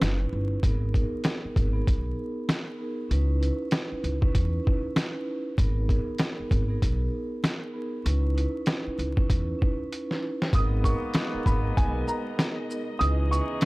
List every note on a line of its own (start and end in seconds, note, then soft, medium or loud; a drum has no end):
0.00 0.25 F#1 medium
0.00 0.57 C#4 medium
0.00 0.58 D#4 medium
0.00 0.58 E4 medium
0.00 0.58 B4 loud
0.00 snare loud
0.00 closed hi-hat medium
0.33 0.56 G1 medium
0.63 1.02 G#1 loud
0.63 0.92 B3 loud
0.63 0.92 D#4 medium
0.63 0.93 G#4 medium
0.63 0.94 A#4 loud
0.63 kick loud
0.63 closed hi-hat medium
0.93 1.67 B3 medium
0.93 1.67 D#4 medium
0.93 1.68 G#4 medium
0.93 1.68 A#4 loud
0.93 kick medium
0.93 closed hi-hat medium
1.24 snare loud
1.24 snare medium
1.24 closed hi-hat medium
1.45 muted upright bass stroke soft
1.56 1.80 G#1 loud
1.56 kick medium
1.56 closed hi-hat medium
1.73 2.72 B3 medium
1.73 2.73 D#4 medium
1.73 2.73 G#4 medium
1.73 2.73 A#4 loud
1.87 2.11 B1 medium
1.87 kick medium
1.87 closed hi-hat medium
2.49 snare loud
2.49 closed hi-hat medium
2.79 3.08 B3 medium
2.79 3.09 D#4 medium
2.79 3.09 G#4 medium
2.79 3.09 A#4 medium
3.10 3.50 C#2 loud
3.10 3.39 C#4 loud
3.10 3.39 D#4 medium
3.10 3.40 E4 medium
3.10 3.40 B4 loud
3.10 closed hi-hat loud
3.40 4.14 C#4 medium
3.40 4.15 D#4 medium
3.40 4.15 E4 medium
3.40 4.15 B4 loud
3.40 closed hi-hat medium
3.71 snare loud
3.71 snare medium
3.71 closed hi-hat medium
3.92 muted upright bass stroke soft
4.04 4.28 C#2 medium
4.04 closed hi-hat medium
4.21 4.62 C#4 medium
4.21 4.62 D#4 medium
4.21 4.63 E4 medium
4.21 4.63 B4 loud
4.21 kick medium
4.35 4.59 E2 loud
4.35 kick medium
4.35 closed hi-hat medium
4.64 5.52 C#4 medium
4.64 5.52 D#4 medium
4.64 5.53 E4 medium
4.64 5.53 B4 loud
4.64 kick medium
4.96 snare loud
4.96 closed hi-hat medium
5.58 5.97 G#1 loud
5.58 5.87 B3 loud
5.58 5.87 D#4 medium
5.58 5.88 G#4 medium
5.58 5.89 A#4 loud
5.58 kick loud
5.58 closed hi-hat medium
5.88 6.62 B3 medium
5.88 6.62 D#4 medium
5.88 6.63 G#4 medium
5.88 6.63 A#4 loud
5.88 kick medium
5.88 closed hi-hat medium
6.18 snare loud
6.18 snare medium
6.18 closed hi-hat medium
6.40 muted upright bass stroke soft
6.51 6.75 G#1 loud
6.51 kick medium
6.51 closed hi-hat medium
6.68 7.67 B3 medium
6.68 7.68 D#4 medium
6.68 7.68 G#4 medium
6.68 7.68 A#4 loud
6.82 7.06 B1 medium
6.82 kick medium
6.82 closed hi-hat medium
7.44 snare loud
7.44 closed hi-hat medium
7.74 8.03 B3 medium
7.74 8.04 D#4 medium
7.74 8.04 G#4 medium
7.74 8.04 A#4 medium
8.05 8.44 C#2 loud
8.05 8.33 C#4 medium
8.05 8.34 D#4 medium
8.05 8.35 E4 medium
8.05 8.35 B4 loud
8.05 closed hi-hat loud
8.35 9.09 C#4 medium
8.35 9.09 D#4 medium
8.35 9.10 E4 medium
8.35 9.10 B4 loud
8.35 closed hi-hat medium
8.66 snare loud
8.66 snare medium
8.66 closed hi-hat medium
8.87 muted upright bass stroke soft
8.99 9.22 C#2 medium
8.99 closed hi-hat medium
9.16 9.57 C#4 medium
9.16 9.57 D#4 medium
9.16 9.57 E4 medium
9.16 9.58 B4 loud
9.16 kick medium
9.30 9.53 E2 loud
9.30 kick medium
9.30 closed hi-hat medium
9.59 10.47 C#4 medium
9.59 10.47 D#4 medium
9.59 10.48 E4 medium
9.59 10.48 B4 loud
9.59 kick medium
9.93 closed hi-hat medium
10.11 snare medium
10.42 snare medium
10.52 10.92 G#1 loud
10.52 12.98 B2 medium
10.52 12.65 D#3 medium
10.52 12.98 G#3 medium
10.52 12.65 A#3 medium
10.52 12.65 B3 medium
10.52 10.81 B3 loud
10.52 10.82 D#4 medium
10.52 10.83 G#4 medium
10.52 10.83 A#4 loud
10.52 13.65 D#5 medium
10.52 10.82 D#6 medium
10.52 kick loud
10.52 closed hi-hat loud
10.83 11.57 B3 medium
10.83 11.57 D#4 medium
10.83 11.57 G#4 medium
10.83 11.58 A#4 loud
10.83 11.42 C#6 medium
10.83 kick medium
10.83 closed hi-hat medium
10.83 shaker medium
11.14 snare loud
11.14 snare medium
11.14 closed hi-hat medium
11.35 muted upright bass stroke soft
11.46 11.70 G#1 loud
11.46 11.74 B5 medium
11.46 kick loud
11.46 closed hi-hat medium
11.46 shaker medium
11.63 12.62 B3 loud
11.63 12.62 D#4 medium
11.63 12.63 G#4 medium
11.63 12.63 A#4 loud
11.77 12.01 B1 medium
11.77 12.05 G#5 medium
11.77 kick medium
11.77 closed hi-hat medium
12.08 12.55 A#5 medium
12.08 shaker medium
12.39 snare loud
12.39 closed hi-hat medium
12.68 12.98 B3 medium
12.68 12.98 D#4 medium
12.68 12.99 G#4 medium
12.68 12.99 A#4 medium
12.68 shaker medium
12.99 13.39 C#2 loud
12.99 13.65 C#3 medium
12.99 13.65 E3 medium
12.99 13.65 B3 medium
12.99 13.29 C#4 loud
12.99 13.29 D#4 medium
12.99 13.65 D#4 medium
12.99 13.30 E4 medium
12.99 13.65 G#4 loud
12.99 13.30 B4 loud
12.99 13.28 D#6 loud
12.99 closed hi-hat medium
13.30 13.65 C#4 medium
13.30 13.65 D#4 medium
13.30 13.65 E4 medium
13.30 13.65 B4 loud
13.30 13.65 C#6 medium
13.30 closed hi-hat medium
13.30 shaker medium
13.61 snare loud
13.61 closed hi-hat medium